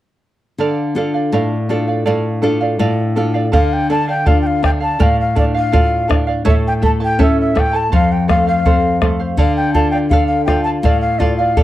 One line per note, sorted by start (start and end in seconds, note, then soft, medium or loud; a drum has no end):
0.58 1.30 D3 soft
0.58 0.95 A4 medium
0.58 0.96 D5 medium
0.58 0.96 F5 medium
0.95 1.54 D4 soft
0.95 1.55 F4 soft
0.95 1.15 A4 soft
0.95 1.55 A4 soft
0.95 1.14 D5 soft
0.95 1.13 F5 medium
1.14 1.32 D5 soft
1.14 1.33 F5 soft
1.32 2.04 A2 medium
1.32 1.68 A4 medium
1.32 1.69 D5 medium
1.32 1.69 F5 medium
1.69 2.28 D4 soft
1.69 2.29 F4 soft
1.69 1.88 A4 soft
1.69 2.29 A4 soft
1.69 1.88 D5 medium
1.69 1.86 F5 medium
1.87 2.04 D5 soft
1.87 2.05 F5 soft
2.05 2.78 A2 medium
2.05 2.41 A4 medium
2.05 2.42 D5 medium
2.05 2.42 F5 medium
2.42 3.02 D4 soft
2.42 3.02 F4 soft
2.42 2.61 A4 medium
2.42 3.02 A4 soft
2.42 2.61 D5 medium
2.42 2.59 F5 medium
2.61 2.78 D5 soft
2.61 2.79 F5 medium
2.79 3.51 A2 medium
2.79 3.15 A4 medium
2.79 3.15 D5 medium
2.79 3.16 F5 medium
3.16 3.46 D4 soft
3.16 3.46 F4 soft
3.16 3.35 A4 medium
3.16 3.46 A4 soft
3.16 3.34 D5 medium
3.16 3.33 F5 medium
3.34 3.51 D5 soft
3.34 3.52 F5 soft
3.52 4.96 D3 medium
3.52 3.88 A4 medium
3.52 3.89 D5 medium
3.52 3.89 F5 medium
3.52 3.75 F5 medium
3.52 bombo low medium
3.73 3.90 G5 medium
3.89 4.25 D4 soft
3.89 4.08 A4 medium
3.89 4.08 D5 medium
3.89 4.06 F5 medium
3.89 4.07 A5 medium
4.08 4.25 D5 soft
4.08 4.26 F5 medium
4.08 4.29 G5 medium
4.26 4.62 F4 medium
4.26 4.61 A4 medium
4.26 4.62 D5 medium
4.26 4.63 F5 medium
4.26 4.41 F5 medium
4.26 bombo low medium
4.42 4.48 G5 medium
4.46 4.64 F5 medium
4.62 4.98 D4 soft
4.62 4.81 A4 soft
4.62 4.80 D5 medium
4.62 4.79 F5 medium
4.62 4.70 G5 medium
4.62 bombo rim medium
4.62 bombo low medium
4.80 4.98 D5 soft
4.80 4.99 F5 soft
4.80 5.04 A5 medium
4.99 6.42 A2 medium
4.99 5.34 A4 medium
4.99 5.35 D5 medium
4.99 5.36 F5 medium
4.99 5.19 F5 medium
4.99 bombo low medium
5.21 5.36 F5 medium
5.35 5.72 D4 soft
5.35 5.54 A4 medium
5.35 5.55 D5 medium
5.35 5.45 D5 medium
5.35 5.53 F5 medium
5.35 bombo low medium
5.54 5.72 D5 soft
5.54 5.72 F5 soft
5.54 6.07 F5 medium
5.72 6.09 F4 soft
5.72 6.07 A4 medium
5.72 6.08 D5 medium
5.72 6.08 F5 medium
5.72 bombo low medium
6.08 6.45 D4 soft
6.08 6.27 A4 soft
6.08 6.27 D5 medium
6.08 6.26 F5 medium
6.08 bombo rim medium
6.08 bombo low medium
6.27 6.45 D5 soft
6.27 6.45 F5 soft
6.45 7.88 A2 medium
6.45 6.81 E4 medium
6.45 6.82 A4 medium
6.45 6.82 C#5 medium
6.45 6.80 E5 medium
6.45 6.82 A5 medium
6.45 bombo low medium
6.49 6.55 E5 medium
6.67 6.73 G5 medium
6.82 7.18 A3 soft
6.82 7.00 E4 medium
6.82 7.00 A4 medium
6.82 7.00 E5 medium
6.82 6.99 A5 medium
6.82 6.91 A5 medium
6.82 bombo low medium
7.00 7.18 E4 soft
7.00 7.18 A4 soft
7.00 7.20 G5 medium
7.00 7.18 A5 medium
7.19 7.54 C#4 medium
7.19 7.54 E4 medium
7.19 7.54 A4 medium
7.19 7.56 C#5 medium
7.19 7.54 E5 medium
7.19 7.38 E5 medium
7.19 7.55 A5 medium
7.19 bombo low medium
7.41 7.61 E5 medium
7.55 7.91 A3 soft
7.55 7.73 E4 medium
7.55 7.73 A4 medium
7.55 7.74 E5 soft
7.55 7.72 A5 medium
7.55 bombo rim soft
7.55 bombo low soft
7.59 7.77 G5 medium
7.73 7.92 E4 soft
7.73 7.91 A4 soft
7.73 7.92 A5 soft
7.73 7.93 A5 medium
7.92 9.35 F2 medium
7.92 8.27 A4 medium
7.92 8.28 C5 medium
7.92 8.29 F5 medium
7.92 8.13 F5 medium
7.92 bombo low medium
8.12 8.28 G5 medium
8.28 8.65 A3 soft
8.28 8.47 A4 medium
8.28 8.47 C5 medium
8.28 8.46 F5 medium
8.28 bombo rim medium
8.28 bombo low soft
8.47 8.65 C5 soft
8.47 8.65 F5 soft
8.47 8.99 F5 medium
8.66 9.01 C4 medium
8.66 9.01 A4 medium
8.66 9.01 C5 medium
8.66 9.02 F5 medium
8.66 bombo low medium
9.02 9.37 A3 soft
9.02 9.20 A4 soft
9.02 9.19 C5 soft
9.02 9.18 F5 soft
9.02 bombo rim soft
9.02 bombo low soft
9.20 9.39 C5 soft
9.20 9.38 F5 soft
9.37 10.80 D3 medium
9.37 9.73 A4 medium
9.37 9.74 D5 medium
9.37 9.55 F5 medium
9.37 9.75 F5 medium
9.37 bombo low medium
9.56 9.73 G5 medium
9.74 10.10 F4 soft
9.74 9.93 A4 soft
9.74 9.93 D5 medium
9.74 9.91 F5 medium
9.74 9.90 A5 medium
9.74 bombo low soft
9.91 10.11 D5 soft
9.91 10.11 F5 medium
9.91 9.97 G5 medium
10.10 10.47 A4 medium
10.10 10.48 D5 medium
10.10 10.26 F5 medium
10.10 10.48 F5 medium
10.10 bombo low medium
10.27 10.44 F5 medium
10.45 10.83 F4 soft
10.45 10.66 A4 medium
10.45 10.63 G5 medium
10.45 bombo rim soft
10.45 bombo low soft
10.49 10.67 D5 medium
10.49 10.65 F5 medium
10.64 10.84 D5 soft
10.64 10.84 F5 soft
10.64 10.70 A5 medium
10.82 11.63 A2 medium
10.82 11.19 A4 medium
10.82 11.20 D5 medium
10.82 11.00 F5 medium
10.82 11.20 F5 medium
10.82 bombo low medium
11.01 11.20 F5 medium
11.19 11.56 F4 soft
11.19 11.39 A4 medium
11.19 11.36 D5 medium
11.19 11.39 D5 medium
11.19 11.37 F5 medium
11.19 bombo low soft
11.37 11.56 D5 soft
11.37 11.63 F5 medium
11.37 11.57 F5 soft
11.57 11.63 A4 medium
11.57 11.63 D5 medium
11.57 11.63 F5 medium
11.57 bombo low medium